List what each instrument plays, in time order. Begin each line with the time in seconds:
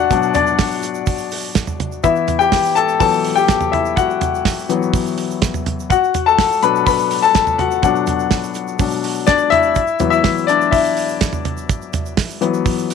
Already playing: grand piano B2 F#3 D4 E4 F#4 D5 E5 F#5
0.11 grand piano B2 F#3 D4, kick, hi-hat pedal, open hi-hat, shaker
0.22 shaker
0.34 grand piano D4 D5, floor tom, hi-hat pedal, open hi-hat, shaker
0.47 shaker
0.59 kick, snare, hi-hat pedal, open hi-hat, shaker
0.71 shaker
0.82 hi-hat pedal, open hi-hat, shaker
0.94 shaker
1.06 kick, hi-hat pedal, open hi-hat, shaker
1.18 shaker
1.31 hi-hat pedal, open hi-hat, shaker
1.43 shaker
1.55 kick, snare, hi-hat pedal, open hi-hat, shaker
1.67 floor tom, shaker
1.80 floor tom, hi-hat pedal, open hi-hat
1.92 shaker
2.04 grand piano E3 B3 E4 E5, kick, hi-hat pedal, open hi-hat, shaker
2.16 shaker
2.28 floor tom, hi-hat pedal, open hi-hat, shaker
2.39 grand piano G4 G5, shaker
2.52 kick, snare, hi-hat pedal, open hi-hat, shaker
2.65 shaker
2.75 grand piano A4 A5, hi-hat pedal, open hi-hat, shaker
2.89 shaker
3.00 grand piano E3 F#3 B3 A4 A5, kick, hi-hat pedal, open hi-hat, shaker
3.13 shaker
3.24 hi-hat pedal, open hi-hat, shaker
3.36 grand piano G4 G5, shaker
3.48 kick, snare, hi-hat pedal, open hi-hat, shaker
3.61 floor tom, shaker
3.72 grand piano E4 E5, floor tom, hi-hat pedal, open hi-hat
3.85 shaker
3.96 grand piano F#4 F#5, kick, hi-hat pedal, open hi-hat, shaker
4.10 shaker
4.21 floor tom, hi-hat pedal, open hi-hat, shaker
4.35 shaker
4.45 kick, snare, hi-hat pedal, open hi-hat, shaker
4.59 shaker
4.69 grand piano E3 F#3 B3, hi-hat pedal, open hi-hat, shaker
4.82 shaker
4.93 kick, hi-hat pedal, open hi-hat, shaker
5.06 shaker
5.18 hi-hat pedal, open hi-hat, shaker
5.31 shaker
5.42 kick, snare, hi-hat pedal, open hi-hat, shaker
5.54 floor tom, shaker
5.66 floor tom, hi-hat pedal, open hi-hat, shaker
5.80 shaker
5.90 grand piano F#4 F#5, kick, hi-hat pedal, open hi-hat, shaker
6.04 shaker
6.14 floor tom, hi-hat pedal, open hi-hat, shaker
6.26 grand piano A4 A5, shaker
6.39 kick, snare, hi-hat pedal, open hi-hat, shaker
6.52 shaker
6.63 grand piano B2 F#3 D4 B4 B5, hi-hat pedal, open hi-hat, shaker
6.75 shaker
6.86 grand piano B4 B5, kick, hi-hat pedal, open hi-hat, shaker
6.99 shaker
7.11 hi-hat pedal, open hi-hat, shaker
7.22 grand piano A4 A5, shaker
7.35 kick, snare, hi-hat pedal, open hi-hat, shaker
7.47 floor tom, shaker
7.58 grand piano F#4 F#5, floor tom, hi-hat pedal, open hi-hat
7.71 shaker
7.82 grand piano B2 F#3 D4 F#4 F#5, kick, hi-hat pedal, open hi-hat, shaker
7.95 shaker
8.07 floor tom, hi-hat pedal, open hi-hat, shaker
8.19 shaker
8.31 kick, snare, hi-hat pedal, open hi-hat, shaker
8.44 shaker
8.54 hi-hat pedal, open hi-hat, shaker
8.68 shaker
8.79 grand piano B2 F#3 D4, kick, hi-hat pedal, open hi-hat, shaker
8.91 shaker
9.03 hi-hat pedal, open hi-hat, shaker
9.15 shaker
9.27 grand piano D4 D5, kick, snare, hi-hat pedal, open hi-hat, shaker
9.38 shaker
9.50 grand piano E4 E5, floor tom, hi-hat pedal, open hi-hat
9.63 shaker
9.75 kick, hi-hat pedal, open hi-hat, shaker
9.87 shaker
9.99 grand piano E3 F#3 B3, floor tom, hi-hat pedal, open hi-hat, shaker
10.10 grand piano E4 E5, shaker
10.24 kick, snare, hi-hat pedal, open hi-hat, shaker
10.38 shaker
10.47 grand piano D4 D5, hi-hat pedal, open hi-hat, shaker
10.61 shaker
10.71 grand piano E4 E5, kick, hi-hat pedal, open hi-hat, shaker
10.85 shaker
10.97 hi-hat pedal, open hi-hat, shaker
11.09 shaker
11.21 kick, snare, hi-hat pedal, open hi-hat, shaker
11.33 floor tom, shaker
11.45 floor tom, hi-hat pedal, open hi-hat
11.57 shaker
11.69 kick, hi-hat pedal, open hi-hat, shaker
11.82 shaker
11.93 floor tom, hi-hat pedal, open hi-hat, shaker
12.06 shaker
12.17 kick, snare, hi-hat pedal, open hi-hat, shaker
12.30 shaker
12.41 grand piano E3 F#3 B3, hi-hat pedal, open hi-hat, shaker
12.54 shaker
12.66 kick, hi-hat pedal, open hi-hat, shaker
12.78 shaker
12.90 hi-hat pedal, open hi-hat, shaker